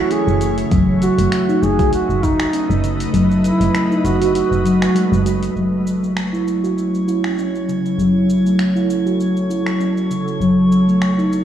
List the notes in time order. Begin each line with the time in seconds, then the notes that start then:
Already playing: E3 A3 C#4 F#4 C#5
0.11 C#4 G#4, open hi-hat, shaker
0.27 F#1, shaker
0.41 C#3, open hi-hat, shaker
0.58 open hi-hat, shaker
0.71 F#1 F#3 A3, kick, open hi-hat, shaker
1.02 F#4, open hi-hat, shaker
1.16 F#1 A3 D#5, open hi-hat, shaker
1.32 finger snap, open hi-hat, shaker
1.49 D#4, shaker
1.62 F#1 G#4 B4, shaker
1.79 F#4, kick, open hi-hat, shaker
1.93 F#4, open hi-hat, shaker
2.09 F#1, shaker
2.23 D#4, kick, open hi-hat, shaker
2.40 finger snap, open hi-hat, shaker
2.53 C#4, open hi-hat, shaker
2.70 F#1, shaker
2.84 C#3, open hi-hat, shaker
3.00 open hi-hat, shaker
3.13 F#1 F#3, open hi-hat, shaker
3.31 shaker
3.44 E4, open hi-hat, shaker
3.60 F#1 A3, open hi-hat, shaker
3.75 finger snap, open hi-hat, shaker
3.91 D#4, shaker
4.04 F#1 F#4, open hi-hat, shaker
4.21 F#4, open hi-hat, shaker
4.34 F#4, open hi-hat, shaker
4.51 F#1, shaker
4.65 F#3, open hi-hat, shaker
4.82 finger snap, open hi-hat, shaker
4.95 G#3, open hi-hat, shaker
5.12 F#1, shaker
5.26 F#4, open hi-hat, shaker
5.43 open hi-hat, shaker
5.56 F#1 F#3 C#5, shaker
5.87 C#4, shaker
6.03 A3, shaker
6.17 finger snap, shaker
6.33 E4, shaker
6.48 shaker
6.63 F#4, shaker
6.74 A4
6.78 shaker
6.91 E4, shaker
7.08 E4, shaker
7.24 finger snap, shaker
7.38 C#4, shaker
7.55 shaker
7.68 C#3, shaker
7.75 C#5
7.86 shaker
7.98 F#1 F#3, shaker
8.30 shaker
8.45 A3, shaker
8.59 finger snap, shaker
8.76 E4, shaker
8.90 shaker
9.06 F#4, shaker
9.20 shaker
9.37 shaker
9.50 E4, shaker
9.67 finger snap, shaker
9.80 C#4, shaker
9.97 shaker
10.10 C#3, shaker
10.28 shaker
10.40 F#1 F#3, shaker
10.67 B3
10.72 shaker
10.76 D#5
10.88 A3, shaker
11.02 finger snap, shaker
11.18 D#4, shaker
11.32 shaker